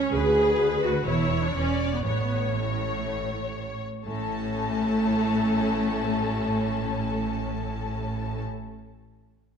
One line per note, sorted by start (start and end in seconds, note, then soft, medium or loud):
0.00 0.12 C#4 loud
0.00 0.10 C#5 loud
0.12 1.04 D2 loud
0.12 1.04 D2 medium
0.12 0.84 G#4 loud
0.12 0.58 B4 medium
0.12 1.04 B4 medium
0.59 1.06 B4 medium
0.84 1.08 F#4 loud
1.07 1.55 E1 medium
1.07 1.54 E2 medium
1.07 1.43 E4 loud
1.07 2.03 C#5 medium
1.07 1.56 C#5 medium
1.44 1.56 D4 loud
1.55 2.04 E1 medium
1.55 2.04 E2 medium
1.55 1.92 C#4 loud
1.55 2.05 D5 medium
1.93 1.98 B3 loud
2.04 3.85 A1 medium
2.04 3.85 A2 medium
2.04 2.54 B3 loud
2.04 2.54 C#5 medium
2.04 3.77 C#5 medium
2.55 3.81 A3 medium
2.55 3.82 C#5 medium
4.06 8.42 A1 medium
4.06 8.42 A2 medium
4.06 8.42 A3 loud
4.06 8.42 C#4 medium
4.06 8.42 A4 medium
4.06 8.42 A5 medium